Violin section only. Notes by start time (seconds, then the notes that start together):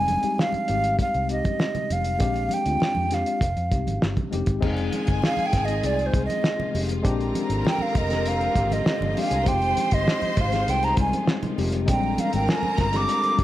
4.62 G#4 G#5
7.04 A#4 A#5
8.93 C4 C5
8.99 D4 D5
9.07 D#4 D#5
9.15 F4 F5
9.23 G4 G5
9.30 G#4 G#5
9.37 A#4 A#5
9.44 C5 C6
11.87 A#4 A#5